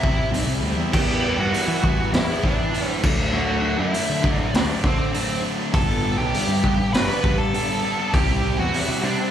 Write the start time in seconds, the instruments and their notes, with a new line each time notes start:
Already playing: lead electric guitar E4 E5
0.03 distorted electric guitar C3 G3 C4 E4, picked electric bass C3, kick
0.17 distorted electric guitar G3 C4 E4, muted overdriven electric guitar stroke
0.31 picked electric bass B1, distorted electric guitar C3 G3 C4 E4, open hi-hat
0.46 picked electric bass C2
0.61 picked electric bass D2, distorted electric guitar C3 G3 C4 E4
0.76 picked electric bass E2, distorted electric guitar G3 C4 E4
0.92 picked electric bass E2, distorted electric guitar E3 G3 B3 E4, lead electric guitar G4 G5, kick, crash
1.08 distorted electric guitar G3 B3 E4
1.23 distorted electric guitar E3 G3 B3 E4
1.38 picked electric bass G2, distorted electric guitar G3 B3 E4, lead electric guitar F#4 F#5
1.52 distorted electric guitar E3 G3 B3 E4, open hi-hat
1.68 picked electric bass E3, overdriven electric guitar G3 B3 E4
1.82 distorted electric guitar E3 G3 B3 E4, picked electric bass E3, kick
1.99 muted overdriven electric guitar stroke
2.13 picked electric bass E2, lead electric guitar E4 E5, snare, open hi-hat
2.27 distorted electric guitar G3 B3 E4
2.42 distorted electric guitar E3 G3 B3 E4, picked electric bass E3, lead electric guitar D4 D5, kick
2.57 distorted electric guitar G3 B3 E4, muted overdriven electric guitar stroke
2.72 distorted electric guitar E3 G3 B3 E4, open hi-hat
2.87 lead electric guitar C5
3.02 picked electric bass D2, distorted electric guitar D3 F#3 A3 D4, kick, crash
3.17 distorted electric guitar F#3 A3 D4
3.32 distorted electric guitar D3 F#3 A3 D4, lead electric guitar F#4 F#5
3.47 distorted electric guitar F#3 A3 D4
3.62 distorted electric guitar D3 F#3 A3 D4
3.78 picked electric bass F#2, distorted electric guitar F#3 A3 D4, lead electric guitar E4 E5
3.92 distorted electric guitar D3 F#3 A3 D4, open hi-hat
4.08 picked electric bass D3, overdriven electric guitar F#3 A3 D4
4.22 distorted electric guitar D3 F#3 A3 D4, picked electric bass D3, kick
4.37 lead electric guitar D5, muted overdriven electric guitar stroke
4.54 picked electric bass D2, lead electric guitar D4 D5, snare, open hi-hat
4.67 distorted electric guitar F#3 A3 D4
4.83 distorted electric guitar D3 F#3 A3 D4, picked electric bass D3, lead electric guitar C4 C5, kick
4.98 distorted electric guitar F#3 A3 D4, muted overdriven electric guitar stroke
5.12 distorted electric guitar D3 F#3 A3 D4, open hi-hat
5.42 distorted electric guitar D3 F#3 A3 D4
5.57 distorted electric guitar F#3 A3 D4
5.72 picked electric bass G1, distorted electric guitar G2 D3 G3 B3 D4, lead electric guitar A4 A5, kick, open hi-hat
5.87 distorted electric guitar G3 B3 D4
6.02 distorted electric guitar D3 G3 B3 D4
6.18 picked electric bass B1, distorted electric guitar G3 B3 D4, lead electric guitar G4 G5
6.34 distorted electric guitar G2 D3 G3 B3 D4, open hi-hat
6.48 picked electric bass G2, overdriven electric guitar G3 B3 D4
6.63 picked electric bass G2, distorted electric guitar D3 G3 B3 D4, kick
6.79 muted overdriven electric guitar stroke
6.93 picked electric bass G1, lead electric guitar B4 B5, snare, open hi-hat
7.07 distorted electric guitar G3 B3 D4
7.23 picked electric bass G2, distorted electric guitar D3 G3 B3 D4, kick
7.38 distorted electric guitar G3 B3 D4, lead electric guitar A4 A5, muted overdriven electric guitar stroke
7.53 distorted electric guitar G2 D3 G3 B3 D4, open hi-hat
7.83 distorted electric guitar D3 G3 B3 D4
7.98 distorted electric guitar G3 B3 D4
8.13 picked electric bass C2, distorted electric guitar C3 G3 C4 E4, lead electric guitar G4 G5, kick, open hi-hat
8.28 distorted electric guitar G3 C4 E4
8.43 distorted electric guitar C3 G3 C4 E4
8.58 picked electric bass E2, distorted electric guitar G3 C4 E4, lead electric guitar F#4 F#5
8.73 distorted electric guitar C3 G3 C4 E4, open hi-hat
8.88 picked electric bass C3, overdriven electric guitar G3 C4 E4
9.02 distorted electric guitar C3 G3 C4 E4, picked electric bass C3, lead electric guitar D4 D5
9.19 muted overdriven electric guitar stroke